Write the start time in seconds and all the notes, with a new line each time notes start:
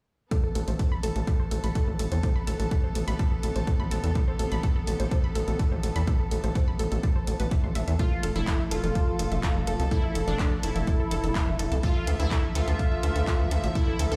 0.31 C3 B3 A4, kick, closed hi-hat
0.44 A4
0.55 A1 A4, closed hi-hat
0.68 A1 C5, closed hi-hat
0.79 A4, kick, closed hi-hat
0.92 B5
1.03 A1 A4, closed hi-hat
1.16 A1 A4, closed hi-hat
1.27 A4, kick, closed hi-hat
1.40 C5
1.51 A1 A4, closed hi-hat
1.64 A1 B5, closed hi-hat
1.75 A4, kick, closed hi-hat
1.88 A1 A4
1.99 A1 A4, closed hi-hat
2.12 E2 C5, closed hi-hat
2.23 A4, kick, closed hi-hat
2.36 B5
2.47 A1 A4, closed hi-hat
2.60 A1 A4, closed hi-hat
2.71 A4, kick, closed hi-hat
2.84 C5
2.95 A1 A4, closed hi-hat
3.08 A1 B5, closed hi-hat
3.19 A4, kick, closed hi-hat
3.32 A4
3.43 A1 A4, closed hi-hat
3.56 A1 C5, closed hi-hat
3.67 A4, kick, closed hi-hat
3.80 A1 B5
3.91 A1 A4, closed hi-hat
4.04 E2 A4, closed hi-hat
4.15 A4, kick, closed hi-hat
4.28 C5
4.39 A1 A4, closed hi-hat
4.52 A1 B5, closed hi-hat
4.63 A4, kick, closed hi-hat
4.76 A4
4.87 A1 A4, closed hi-hat
5.00 A1 C5, closed hi-hat
5.11 A4, kick, closed hi-hat
5.24 B5
5.35 A1 A4, closed hi-hat
5.48 A1 A4, closed hi-hat
5.59 A4, kick, closed hi-hat
5.72 A1 C5
5.83 A1 A4, closed hi-hat
5.96 E2 B5, closed hi-hat
6.07 A4, kick, closed hi-hat
6.20 A4
6.31 A1 A4, closed hi-hat
6.44 A1 C5, closed hi-hat
6.55 A4, kick, closed hi-hat
6.68 B5
6.79 A1 A4, closed hi-hat
6.92 A1 A4, closed hi-hat
7.03 A4, kick, closed hi-hat
7.16 C5
7.27 A1 A4, closed hi-hat
7.40 A1 B4, closed hi-hat
7.51 E5, kick, closed hi-hat
7.64 A1 C6
7.75 A1 E5, closed hi-hat
7.88 E2 E5, closed hi-hat
7.99 F3 A3 F4 A4, kick, closed hi-hat
8.12 A4
8.23 F1 A4, closed hi-hat
8.36 F1 E4 A4, closed hi-hat
8.47 A4, kick, clap, closed hi-hat
8.60 E5
8.71 F1 F4 A4, closed hi-hat
8.84 F1 A4, closed hi-hat
8.95 A4, kick, closed hi-hat
9.08 A4
9.19 F1 A4, closed hi-hat
9.32 F1 E5, closed hi-hat
9.43 A4, kick, clap, closed hi-hat
9.56 F1 A4
9.67 F1 A4, closed hi-hat
9.80 C2 A4, closed hi-hat
9.91 E4 A4, kick, closed hi-hat
10.04 E5
10.15 F1 A4, closed hi-hat
10.28 F1 D4 A4, closed hi-hat
10.39 A4, kick, clap, closed hi-hat
10.52 A4
10.63 F1 E4 A4, closed hi-hat
10.76 F1 E5, closed hi-hat
10.87 A4, kick, closed hi-hat
11.00 A4
11.11 F1 A4, closed hi-hat
11.24 F1 A4, closed hi-hat
11.35 A4, kick, clap, closed hi-hat
11.48 F1 E5
11.59 F1 A4, closed hi-hat
11.72 C2 A4, closed hi-hat
11.83 D3 F3 F4 A4 E5, kick, closed hi-hat
11.96 A4
12.07 D2 A4, closed hi-hat
12.20 D2 E4 E5, closed hi-hat
12.31 A4, kick, clap, closed hi-hat
12.44 A4
12.55 D2 F4 A4, closed hi-hat
12.68 D2 A4, closed hi-hat
12.79 A4, kick, closed hi-hat
12.92 E5
13.03 D2 A4, closed hi-hat
13.16 D2 A4, closed hi-hat
13.27 A4, kick, clap, closed hi-hat
13.40 D2 A4
13.51 D2 A4, closed hi-hat
13.64 A1 E5, closed hi-hat
13.75 E4 A4, kick, closed hi-hat
13.88 A4
13.99 D2 A4, closed hi-hat
14.12 D2 A4, closed hi-hat